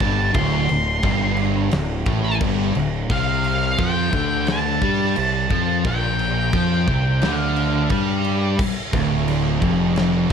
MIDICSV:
0, 0, Header, 1, 5, 480
1, 0, Start_track
1, 0, Key_signature, -1, "minor"
1, 0, Tempo, 686499
1, 247, Time_signature, 4, 2, 24, 8
1, 7221, End_track
2, 0, Start_track
2, 0, Title_t, "Lead electric guitar"
2, 0, Program_c, 0, 29
2, 0, Note_on_c, 0, 81, 95
2, 216, Note_off_c, 0, 81, 0
2, 242, Note_on_c, 0, 84, 94
2, 1656, Note_off_c, 0, 84, 0
2, 2178, Note_on_c, 0, 77, 95
2, 2660, Note_on_c, 0, 79, 101
2, 2666, Note_off_c, 0, 77, 0
2, 3131, Note_off_c, 0, 79, 0
2, 3134, Note_on_c, 0, 81, 110
2, 4102, Note_off_c, 0, 81, 0
2, 4105, Note_on_c, 0, 79, 80
2, 5160, Note_off_c, 0, 79, 0
2, 5160, Note_on_c, 0, 77, 80
2, 5747, Note_off_c, 0, 77, 0
2, 7221, End_track
3, 0, Start_track
3, 0, Title_t, "Distorted electric guitar"
3, 0, Program_c, 1, 30
3, 4, Note_on_c, 1, 43, 99
3, 238, Note_off_c, 1, 43, 0
3, 245, Note_on_c, 1, 38, 112
3, 479, Note_off_c, 1, 38, 0
3, 488, Note_on_c, 1, 38, 81
3, 679, Note_off_c, 1, 38, 0
3, 726, Note_on_c, 1, 43, 110
3, 1199, Note_off_c, 1, 43, 0
3, 1207, Note_on_c, 1, 38, 71
3, 1398, Note_off_c, 1, 38, 0
3, 1442, Note_on_c, 1, 45, 101
3, 1677, Note_off_c, 1, 45, 0
3, 1683, Note_on_c, 1, 43, 100
3, 1917, Note_off_c, 1, 43, 0
3, 1926, Note_on_c, 1, 38, 75
3, 2118, Note_off_c, 1, 38, 0
3, 2165, Note_on_c, 1, 48, 115
3, 2638, Note_off_c, 1, 48, 0
3, 2649, Note_on_c, 1, 53, 127
3, 2880, Note_off_c, 1, 53, 0
3, 2886, Note_on_c, 1, 50, 118
3, 3359, Note_off_c, 1, 50, 0
3, 3370, Note_on_c, 1, 55, 104
3, 3601, Note_off_c, 1, 55, 0
3, 3612, Note_on_c, 1, 48, 79
3, 3801, Note_off_c, 1, 48, 0
3, 3848, Note_on_c, 1, 53, 101
3, 4080, Note_off_c, 1, 53, 0
3, 4092, Note_on_c, 1, 46, 115
3, 4562, Note_off_c, 1, 46, 0
3, 4570, Note_on_c, 1, 53, 112
3, 4801, Note_off_c, 1, 53, 0
3, 4812, Note_on_c, 1, 48, 117
3, 5042, Note_off_c, 1, 48, 0
3, 5052, Note_on_c, 1, 50, 106
3, 5521, Note_off_c, 1, 50, 0
3, 5528, Note_on_c, 1, 55, 101
3, 5999, Note_off_c, 1, 55, 0
3, 6243, Note_on_c, 1, 38, 113
3, 6716, Note_off_c, 1, 38, 0
3, 6722, Note_on_c, 1, 41, 110
3, 7195, Note_off_c, 1, 41, 0
3, 7221, End_track
4, 0, Start_track
4, 0, Title_t, "Fingered electric bass"
4, 0, Program_c, 2, 33
4, 2, Note_on_c, 2, 31, 90
4, 228, Note_off_c, 2, 31, 0
4, 241, Note_on_c, 2, 26, 113
4, 467, Note_off_c, 2, 26, 0
4, 492, Note_on_c, 2, 26, 82
4, 712, Note_off_c, 2, 26, 0
4, 725, Note_on_c, 2, 31, 92
4, 1178, Note_off_c, 2, 31, 0
4, 1207, Note_on_c, 2, 26, 82
4, 1430, Note_off_c, 2, 26, 0
4, 1444, Note_on_c, 2, 33, 106
4, 1668, Note_off_c, 2, 33, 0
4, 1682, Note_on_c, 2, 31, 110
4, 1907, Note_off_c, 2, 31, 0
4, 1927, Note_on_c, 2, 26, 92
4, 2150, Note_off_c, 2, 26, 0
4, 2166, Note_on_c, 2, 36, 104
4, 2618, Note_off_c, 2, 36, 0
4, 2647, Note_on_c, 2, 41, 101
4, 2870, Note_off_c, 2, 41, 0
4, 2887, Note_on_c, 2, 38, 103
4, 3339, Note_off_c, 2, 38, 0
4, 3369, Note_on_c, 2, 43, 97
4, 3591, Note_off_c, 2, 43, 0
4, 3617, Note_on_c, 2, 36, 93
4, 3835, Note_off_c, 2, 36, 0
4, 3849, Note_on_c, 2, 41, 97
4, 4071, Note_off_c, 2, 41, 0
4, 4088, Note_on_c, 2, 34, 108
4, 4539, Note_off_c, 2, 34, 0
4, 4568, Note_on_c, 2, 41, 100
4, 4790, Note_off_c, 2, 41, 0
4, 4811, Note_on_c, 2, 36, 93
4, 5032, Note_off_c, 2, 36, 0
4, 5051, Note_on_c, 2, 38, 102
4, 5500, Note_off_c, 2, 38, 0
4, 5528, Note_on_c, 2, 43, 102
4, 5978, Note_off_c, 2, 43, 0
4, 6246, Note_on_c, 2, 26, 107
4, 6697, Note_off_c, 2, 26, 0
4, 6727, Note_on_c, 2, 29, 92
4, 7177, Note_off_c, 2, 29, 0
4, 7221, End_track
5, 0, Start_track
5, 0, Title_t, "Drums"
5, 0, Note_on_c, 9, 49, 57
5, 3, Note_on_c, 9, 36, 94
5, 70, Note_off_c, 9, 49, 0
5, 73, Note_off_c, 9, 36, 0
5, 238, Note_on_c, 9, 49, 88
5, 243, Note_on_c, 9, 36, 119
5, 308, Note_off_c, 9, 49, 0
5, 313, Note_off_c, 9, 36, 0
5, 482, Note_on_c, 9, 49, 68
5, 552, Note_off_c, 9, 49, 0
5, 718, Note_on_c, 9, 49, 81
5, 723, Note_on_c, 9, 36, 98
5, 788, Note_off_c, 9, 49, 0
5, 793, Note_off_c, 9, 36, 0
5, 956, Note_on_c, 9, 49, 64
5, 1026, Note_off_c, 9, 49, 0
5, 1198, Note_on_c, 9, 49, 85
5, 1209, Note_on_c, 9, 38, 124
5, 1268, Note_off_c, 9, 49, 0
5, 1279, Note_off_c, 9, 38, 0
5, 1438, Note_on_c, 9, 49, 66
5, 1443, Note_on_c, 9, 36, 103
5, 1508, Note_off_c, 9, 49, 0
5, 1513, Note_off_c, 9, 36, 0
5, 1684, Note_on_c, 9, 36, 120
5, 1684, Note_on_c, 9, 49, 91
5, 1754, Note_off_c, 9, 36, 0
5, 1754, Note_off_c, 9, 49, 0
5, 1922, Note_on_c, 9, 49, 69
5, 1992, Note_off_c, 9, 49, 0
5, 2166, Note_on_c, 9, 49, 98
5, 2167, Note_on_c, 9, 36, 113
5, 2236, Note_off_c, 9, 49, 0
5, 2237, Note_off_c, 9, 36, 0
5, 2406, Note_on_c, 9, 49, 72
5, 2476, Note_off_c, 9, 49, 0
5, 2646, Note_on_c, 9, 49, 91
5, 2647, Note_on_c, 9, 36, 112
5, 2716, Note_off_c, 9, 49, 0
5, 2717, Note_off_c, 9, 36, 0
5, 2886, Note_on_c, 9, 49, 69
5, 2887, Note_on_c, 9, 36, 108
5, 2956, Note_off_c, 9, 49, 0
5, 2957, Note_off_c, 9, 36, 0
5, 3124, Note_on_c, 9, 49, 90
5, 3135, Note_on_c, 9, 38, 104
5, 3194, Note_off_c, 9, 49, 0
5, 3205, Note_off_c, 9, 38, 0
5, 3368, Note_on_c, 9, 36, 103
5, 3368, Note_on_c, 9, 49, 57
5, 3438, Note_off_c, 9, 36, 0
5, 3438, Note_off_c, 9, 49, 0
5, 3607, Note_on_c, 9, 49, 90
5, 3677, Note_off_c, 9, 49, 0
5, 3849, Note_on_c, 9, 36, 90
5, 3849, Note_on_c, 9, 49, 63
5, 3918, Note_off_c, 9, 49, 0
5, 3919, Note_off_c, 9, 36, 0
5, 4086, Note_on_c, 9, 49, 77
5, 4088, Note_on_c, 9, 36, 117
5, 4156, Note_off_c, 9, 49, 0
5, 4158, Note_off_c, 9, 36, 0
5, 4328, Note_on_c, 9, 49, 67
5, 4398, Note_off_c, 9, 49, 0
5, 4566, Note_on_c, 9, 49, 84
5, 4567, Note_on_c, 9, 36, 112
5, 4636, Note_off_c, 9, 49, 0
5, 4637, Note_off_c, 9, 36, 0
5, 4808, Note_on_c, 9, 36, 107
5, 4810, Note_on_c, 9, 49, 62
5, 4878, Note_off_c, 9, 36, 0
5, 4880, Note_off_c, 9, 49, 0
5, 5045, Note_on_c, 9, 49, 88
5, 5056, Note_on_c, 9, 38, 122
5, 5114, Note_off_c, 9, 49, 0
5, 5126, Note_off_c, 9, 38, 0
5, 5287, Note_on_c, 9, 49, 64
5, 5357, Note_off_c, 9, 49, 0
5, 5521, Note_on_c, 9, 49, 90
5, 5526, Note_on_c, 9, 36, 108
5, 5591, Note_off_c, 9, 49, 0
5, 5596, Note_off_c, 9, 36, 0
5, 5765, Note_on_c, 9, 49, 56
5, 5835, Note_off_c, 9, 49, 0
5, 6006, Note_on_c, 9, 49, 99
5, 6006, Note_on_c, 9, 57, 127
5, 6007, Note_on_c, 9, 36, 120
5, 6076, Note_off_c, 9, 49, 0
5, 6076, Note_off_c, 9, 57, 0
5, 6077, Note_off_c, 9, 36, 0
5, 6246, Note_on_c, 9, 36, 121
5, 6247, Note_on_c, 9, 49, 84
5, 6316, Note_off_c, 9, 36, 0
5, 6317, Note_off_c, 9, 49, 0
5, 6487, Note_on_c, 9, 49, 87
5, 6498, Note_on_c, 9, 38, 34
5, 6557, Note_off_c, 9, 49, 0
5, 6568, Note_off_c, 9, 38, 0
5, 6726, Note_on_c, 9, 36, 101
5, 6727, Note_on_c, 9, 49, 72
5, 6796, Note_off_c, 9, 36, 0
5, 6797, Note_off_c, 9, 49, 0
5, 6964, Note_on_c, 9, 49, 81
5, 6975, Note_on_c, 9, 38, 114
5, 7034, Note_off_c, 9, 49, 0
5, 7045, Note_off_c, 9, 38, 0
5, 7221, End_track
0, 0, End_of_file